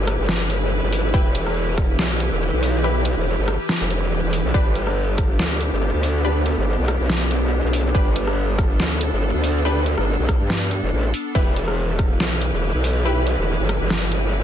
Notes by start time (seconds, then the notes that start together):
Already playing: G1 E3 E4 G4 B4
0.07 cross-stick, closed hi-hat
0.19 G1
0.29 snare
0.50 closed hi-hat
0.83 G1
0.93 open hi-hat
1.14 E1 E4 G4 B4, kick
1.35 closed hi-hat
1.47 cross-stick
1.78 kick, cross-stick, closed hi-hat
1.99 B1, snare
2.20 closed hi-hat
2.32 E1
2.53 B1
2.63 open hi-hat
2.84 E4 G4 B4
3.05 closed hi-hat
3.17 E1
3.38 G1
3.48 cross-stick, closed hi-hat
3.69 snare
3.81 F1
3.90 closed hi-hat
4.23 E1
4.33 open hi-hat
4.44 B1
4.54 G1 B3 D4 G4 B4, kick
4.75 closed hi-hat
4.87 cross-stick
5.18 kick, cross-stick, closed hi-hat
5.39 D2, snare
5.61 closed hi-hat
5.72 G1
5.93 D2
6.03 open hi-hat
6.24 D4 G4 B4
6.46 closed hi-hat
6.57 G1
6.78 B1
6.88 cross-stick, closed hi-hat
7.00 B1
7.10 snare
7.31 closed hi-hat
7.64 B1
7.73 open hi-hat
7.95 G1 D4 G4 A4 B4, kick
8.16 closed hi-hat
8.27 cross-stick
8.58 kick, cross-stick, closed hi-hat
8.80 D2, snare
9.01 closed hi-hat
9.12 G1
9.34 D2
9.44 open hi-hat
9.65 D4 G4 B4
9.86 closed hi-hat
9.98 G1, cross-stick
10.19 B1
10.29 kick, cross-stick, closed hi-hat
10.40 G2
10.50 snare
10.71 closed hi-hat
10.83 F1
10.93 A1
11.14 open hi-hat
11.35 E1 E3 E4 G4 B4, kick, crash
11.56 closed hi-hat
11.68 cross-stick
11.99 kick, cross-stick, closed hi-hat
12.20 B1, snare
12.41 closed hi-hat
12.53 E1
12.74 B1
12.84 open hi-hat
13.05 E4 G4 B4
13.27 closed hi-hat
13.38 E1
13.59 G1
13.69 cross-stick, closed hi-hat
13.81 G1
13.90 snare
14.12 closed hi-hat